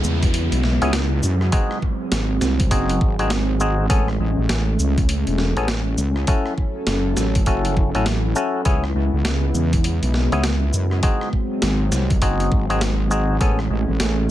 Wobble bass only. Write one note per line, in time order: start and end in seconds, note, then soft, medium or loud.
0.04 0.49 E2 loud
0.52 0.79 B1 loud
0.82 1.21 C#2 loud
1.23 1.51 F#2 loud
2.12 2.40 G#1 loud
2.42 2.70 C2 loud
2.71 2.99 F#1 loud
3.01 3.88 G#1 loud
3.90 4.18 A1 loud
4.20 4.35 A1 loud
4.38 4.48 A1 loud
4.49 4.77 A1 loud
4.79 5.24 C#2 loud
5.27 5.54 E1 loud
5.57 5.96 A1 loud
5.98 6.26 C#2 medium
6.87 7.15 F#1 loud
7.16 7.45 A1 loud
7.47 7.92 F#1 loud
7.95 8.34 A1 loud
8.66 8.93 C#2 loud
8.95 9.10 C#2 medium
9.13 9.23 C#2 loud
9.25 9.53 C#2 loud
9.54 10.00 E2 loud
10.03 10.29 B1 loud
10.32 10.72 C#2 loud
10.73 11.01 F#2 loud
11.62 11.90 G#1 loud
11.92 12.20 C2 loud
12.22 12.50 F#1 loud
12.52 13.39 G#1 loud
13.41 13.69 A1 loud
13.70 13.86 A1 loud
13.89 13.98 A1 loud
14.00 14.28 A1 loud